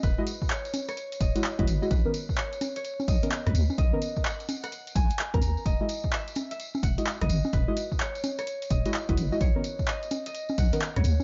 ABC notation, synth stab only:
X:1
M:4/4
L:1/16
Q:"Swing 16ths" 1/4=128
K:Elyd
V:1 name="Synth stab"
z [G,EFd] z8 z [G,EFd] z [G,EFd] z [G,EFd] | z [D,B,CA] z8 z [D,B,CA] z4 | z [D,B,CA] z8 z3 [D,B,CA] z2 | z [G,EFd] z8 z [G,EFd] z4 |
z [G,EFd] z8 z [G,EFd] z [G,EFd] z [G,EFd] | z [D,B,CA] z8 z [D,B,CA] z4 |]